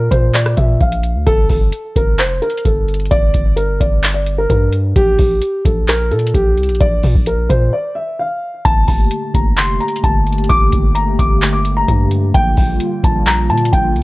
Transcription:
0.11 0.56 A#2 loud
0.11 0.32 C5 medium
0.11 kick medium
0.11 closed hi-hat medium
0.34 0.55 D5 medium
0.34 clap loud
0.34 closed hi-hat medium
0.46 cross-stick loud
0.57 0.80 A#2 loud
0.57 0.78 E5 medium
0.57 kick loud
0.57 closed hi-hat medium
0.81 1.17 A#1 loud
0.81 1.24 F5 medium
0.81 kick medium
0.81 closed hi-hat soft
0.92 closed hi-hat medium
1.03 closed hi-hat medium
1.15 1.26 D2 loud
1.27 1.49 G1 loud
1.27 1.47 A4 loud
1.27 kick loud
1.27 closed hi-hat medium
1.49 1.72 G1 loud
1.49 kick medium
1.49 open hi-hat medium
1.72 closed hi-hat medium
1.96 2.21 G1 loud
1.96 2.17 A#4 medium
1.96 kick medium
1.96 closed hi-hat medium
2.19 2.41 F1 loud
2.19 2.40 C5 medium
2.19 clap loud
2.19 closed hi-hat medium
2.42 2.63 A#4 medium
2.42 closed hi-hat soft
2.50 closed hi-hat medium
2.57 closed hi-hat medium
2.65 3.09 G1 loud
2.65 3.09 A4 medium
2.65 kick medium
2.65 closed hi-hat medium
2.88 closed hi-hat soft
2.94 closed hi-hat medium
3.00 closed hi-hat medium
3.06 closed hi-hat medium
3.11 3.33 G1 loud
3.11 3.55 D5 loud
3.11 kick loud
3.11 closed hi-hat medium
3.34 3.79 G1 loud
3.34 kick medium
3.34 closed hi-hat medium
3.56 3.78 A#4 medium
3.56 closed hi-hat medium
3.80 4.47 G1 loud
3.80 4.13 D5 medium
3.80 kick medium
3.80 closed hi-hat medium
4.04 clap loud
4.04 closed hi-hat medium
4.14 4.35 D5 medium
4.26 closed hi-hat medium
4.38 4.49 A#4 medium
4.50 4.94 G2 loud
4.50 4.71 A#4 medium
4.50 kick medium
4.50 closed hi-hat medium
4.73 closed hi-hat medium
4.96 5.18 A#1 loud
4.96 5.17 G4 loud
4.96 kick loud
4.96 closed hi-hat medium
5.19 5.41 A#1 loud
5.19 5.62 G4 medium
5.19 kick medium
5.19 open hi-hat medium
5.42 closed hi-hat medium
5.65 6.13 A#1 loud
5.65 5.86 A4 medium
5.65 kick medium
5.65 closed hi-hat medium
5.88 6.09 A#4 medium
5.88 clap loud
5.88 closed hi-hat medium
6.11 6.33 A#2 medium
6.11 6.32 A4 medium
6.11 closed hi-hat soft
6.19 closed hi-hat medium
6.27 closed hi-hat medium
6.34 6.59 A#1 loud
6.34 6.78 G4 medium
6.34 kick medium
6.34 closed hi-hat medium
6.58 6.71 C2 loud
6.58 closed hi-hat soft
6.63 closed hi-hat medium
6.69 6.80 A#1 loud
6.69 closed hi-hat medium
6.75 closed hi-hat medium
6.81 7.03 A#1 loud
6.81 7.24 D5 loud
6.81 kick loud
6.81 closed hi-hat medium
7.03 7.15 A#2 loud
7.03 kick medium
7.03 open hi-hat medium
7.15 7.48 A#1 loud
7.15 kick medium
7.26 7.48 A#4 medium
7.26 closed hi-hat medium
7.49 7.72 A#2 loud
7.49 7.70 C5 medium
7.49 kick medium
7.49 closed hi-hat medium
7.73 7.94 D5 medium
7.95 8.16 E5 medium
8.19 8.63 F5 medium
8.65 8.87 G1 loud
8.65 14.03 D3 medium
8.65 12.31 A3 medium
8.65 14.03 A#3 medium
8.65 12.31 G4 medium
8.65 8.86 A5 loud
8.65 kick loud
8.65 closed hi-hat medium
8.88 9.10 G1 loud
8.88 9.32 A5 medium
8.88 kick medium
8.88 open hi-hat medium
9.11 closed hi-hat medium
9.34 9.59 G1 loud
9.34 9.55 A#5 medium
9.34 kick medium
9.34 closed hi-hat medium
9.57 9.79 F1 loud
9.57 9.78 C6 medium
9.57 clap loud
9.57 closed hi-hat medium
9.80 10.01 A#5 medium
9.80 closed hi-hat soft
9.88 closed hi-hat medium
9.96 closed hi-hat medium
10.04 10.48 G1 loud
10.04 10.47 A5 medium
10.04 kick medium
10.04 closed hi-hat medium
10.27 closed hi-hat soft
10.32 closed hi-hat medium
10.38 closed hi-hat medium
10.44 closed hi-hat medium
10.49 10.72 G1 loud
10.49 10.93 D6 loud
10.49 kick loud
10.49 closed hi-hat medium
10.72 11.17 G1 loud
10.72 kick medium
10.72 closed hi-hat medium
10.95 11.16 A#5 medium
10.95 closed hi-hat medium
11.19 11.85 G1 loud
11.19 11.51 D6 medium
11.19 kick loud
11.19 closed hi-hat medium
11.42 clap loud
11.42 closed hi-hat medium
11.53 11.74 D6 medium
11.65 closed hi-hat medium
11.77 11.87 A#5 medium
11.88 12.33 G2 loud
11.88 kick medium
11.88 closed hi-hat medium
12.11 closed hi-hat medium
12.34 12.57 A#1 loud
12.34 14.03 G3 medium
12.34 14.03 F4 medium
12.34 12.55 G5 loud
12.34 kick loud
12.34 closed hi-hat medium
12.57 12.80 A#1 loud
12.57 13.01 G5 medium
12.57 kick loud
12.57 open hi-hat medium
12.80 closed hi-hat medium
13.04 13.51 A#1 loud
13.04 13.25 A5 medium
13.04 kick loud
13.04 closed hi-hat medium
13.27 13.48 A#5 medium
13.27 clap loud
13.27 closed hi-hat medium
13.50 13.72 A#2 loud
13.50 13.70 A5 medium
13.50 closed hi-hat soft
13.58 closed hi-hat medium
13.65 closed hi-hat medium
13.73 13.97 A#1 loud
13.73 14.03 G5 medium
13.73 kick medium
13.73 closed hi-hat medium
13.96 14.03 C2 loud
13.96 closed hi-hat soft

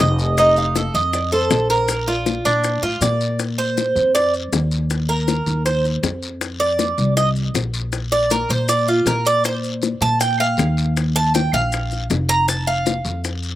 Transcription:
0.00 0.88 F1 loud
0.00 0.37 D#5 medium
0.00 high bongo medium
0.00 low bongo medium
0.00 short guiro medium
0.00 maracas medium
0.19 short guiro medium
0.19 maracas soft
0.37 0.75 D#4 medium
0.37 0.57 D#5 loud
0.37 high bongo medium
0.37 long guiro medium
0.37 maracas medium
0.56 0.92 F5 loud
0.56 maracas soft
0.75 0.94 A4 medium
0.75 high bongo medium
0.75 short guiro medium
0.75 maracas medium
0.94 1.47 F2 loud
0.94 1.31 D#5 medium
0.94 short guiro medium
0.94 maracas soft
1.13 1.20 D5 medium
1.13 high bongo medium
1.13 long guiro medium
1.13 maracas medium
1.32 1.69 A4 medium
1.32 1.91 C5 loud
1.32 maracas soft
1.50 2.39 A#1 loud
1.50 high bongo medium
1.50 low bongo medium
1.50 short guiro medium
1.50 maracas medium
1.70 2.07 A#4 medium
1.70 short guiro medium
1.70 maracas soft
1.88 2.09 A#4 medium
1.88 high bongo medium
1.88 long guiro medium
1.88 maracas medium
2.07 2.44 F4 medium
2.07 2.43 D5 medium
2.07 high bongo soft
2.07 maracas soft
2.26 high bongo medium
2.26 short guiro medium
2.26 maracas medium
2.45 2.80 A#2 loud
2.45 2.82 D4 medium
2.45 high bongo soft
2.45 short guiro medium
2.45 maracas soft
2.64 high bongo medium
2.64 long guiro medium
2.64 maracas medium
2.82 3.00 A2 medium
2.82 3.01 F4 medium
2.82 high bongo soft
2.82 maracas soft
3.01 3.90 A#2 medium
3.01 3.39 D5 medium
3.01 high bongo medium
3.01 low bongo medium
3.01 short guiro medium
3.01 maracas medium
3.21 short guiro medium
3.21 maracas soft
3.39 high bongo medium
3.39 long guiro medium
3.39 maracas medium
3.58 4.11 C5 medium
3.58 maracas soft
3.77 high bongo medium
3.77 short guiro medium
3.77 maracas medium
3.95 4.49 F2 medium
3.95 short guiro medium
3.95 maracas soft
4.15 4.33 D5 medium
4.15 high bongo medium
4.15 long guiro medium
4.15 maracas medium
4.34 maracas soft
4.52 5.41 D#2 medium
4.52 high bongo medium
4.52 low bongo medium
4.52 short guiro medium
4.52 maracas medium
4.71 short guiro medium
4.71 maracas soft
4.90 high bongo medium
4.90 long guiro medium
4.90 maracas medium
5.09 5.62 A#4 medium
5.09 high bongo soft
5.09 maracas soft
5.28 high bongo medium
5.28 short guiro medium
5.28 maracas medium
5.46 6.00 D#2 medium
5.46 high bongo soft
5.46 short guiro medium
5.46 maracas soft
5.66 5.84 C5 medium
5.66 high bongo medium
5.66 long guiro medium
5.66 maracas medium
5.85 high bongo soft
5.85 maracas soft
6.03 6.92 F2 medium
6.03 high bongo medium
6.03 low bongo medium
6.03 short guiro medium
6.03 maracas medium
6.23 short guiro medium
6.23 maracas soft
6.41 high bongo medium
6.41 long guiro medium
6.41 maracas medium
6.60 7.13 D5 medium
6.60 maracas soft
6.79 high bongo medium
6.79 short guiro medium
6.79 maracas medium
6.98 7.51 C2 loud
6.98 short guiro medium
6.98 maracas soft
7.17 7.28 D#5 medium
7.17 high bongo medium
7.17 long guiro medium
7.17 maracas medium
7.36 maracas soft
7.54 8.44 A#1 loud
7.54 high bongo medium
7.54 low bongo medium
7.54 short guiro medium
7.54 maracas medium
7.74 short guiro medium
7.74 maracas soft
7.92 high bongo medium
7.92 long guiro medium
7.92 maracas medium
8.11 8.30 D5 loud
8.11 high bongo soft
8.11 maracas soft
8.30 8.50 A#4 medium
8.30 high bongo medium
8.30 short guiro medium
8.30 maracas medium
8.49 9.02 A#2 medium
8.49 8.69 C5 loud
8.49 high bongo soft
8.49 short guiro medium
8.49 maracas soft
8.68 8.87 D5 loud
8.68 high bongo medium
8.68 long guiro medium
8.68 maracas medium
8.87 9.06 F4 medium
8.87 high bongo soft
8.87 maracas soft
9.06 9.95 A#2 loud
9.06 9.25 A#4 medium
9.06 high bongo medium
9.06 low bongo medium
9.06 short guiro medium
9.06 maracas medium
9.25 9.45 D5 loud
9.25 short guiro medium
9.25 maracas soft
9.44 9.57 C5 medium
9.44 high bongo medium
9.44 long guiro medium
9.44 maracas medium
9.64 maracas soft
9.82 high bongo medium
9.82 short guiro medium
9.82 maracas medium
10.01 10.54 A#2 loud
10.01 10.20 A5 loud
10.01 short guiro medium
10.01 maracas soft
10.19 10.39 G5 medium
10.19 high bongo medium
10.19 long guiro medium
10.19 maracas medium
10.40 10.93 F5 loud
10.40 maracas soft
10.57 11.47 D#2 loud
10.57 high bongo medium
10.57 low bongo medium
10.57 short guiro medium
10.57 maracas medium
10.77 short guiro medium
10.77 maracas soft
10.96 high bongo medium
10.96 long guiro medium
10.96 maracas medium
11.15 11.34 A5 loud
11.15 high bongo soft
11.15 maracas soft
11.34 11.53 G5 medium
11.34 high bongo medium
11.34 short guiro medium
11.34 maracas medium
11.53 12.06 A#1 loud
11.53 12.07 F5 medium
11.53 high bongo soft
11.53 short guiro medium
11.53 maracas soft
11.72 high bongo medium
11.72 long guiro medium
11.72 maracas medium
11.91 high bongo soft
11.91 maracas soft
12.10 12.99 F1 loud
12.10 high bongo medium
12.10 low bongo medium
12.10 short guiro medium
12.10 maracas medium
12.29 12.48 A#5 loud
12.29 short guiro medium
12.29 maracas soft
12.48 12.67 A5 medium
12.48 high bongo medium
12.48 long guiro medium
12.48 maracas medium
12.67 13.20 F5 medium
12.67 maracas soft
12.86 high bongo medium
12.86 short guiro medium
12.86 maracas medium
13.05 13.56 F2 loud
13.05 short guiro medium
13.05 maracas soft
13.24 high bongo medium
13.24 long guiro medium
13.24 maracas medium
13.43 maracas soft

